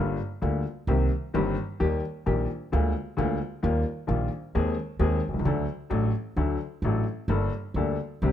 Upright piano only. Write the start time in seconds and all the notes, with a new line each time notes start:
Already playing: G1 G2 D3 G3 A#3 F4
0.42 D2 D3 G3 A#3 F4
0.88 C2 C3 D#3 A#3 C4 G4
1.34 G1 G2 D#3 A#3 C4 G4
1.80 D#2 D#3 G3 A#3 G4
2.26 A#1 A#2 D#3 G3 A#3 G4
2.72 D2 D3 G#3 A#3 F4
3.17 D2 D3 G#3 A#3 F4
3.63 D#2 D#3 G3 A#3 F4
4.07 A#1 A#2 D#3 G3 A#3 F4
4.55 D#2 D#3 G#3 C4 G#4
5.00 D#2 D#3 G#3 C4 G#4
5.29 B1
5.34 C2
5.39 C#2
5.45 D2 D3 F#3 A3 D4 A4
5.90 A1 A2 F#3 A3 D4 A4
6.37 D2 D3 F#3 A3 D4 A4
6.84 A1 A2 F#3 A3 D4 A4
7.29 G1 G2 G3 A#3 D4 A4
7.76 D2 D3 G3 A#3 D4 A4
8.23 C2 C3 D3 G3 C4 G4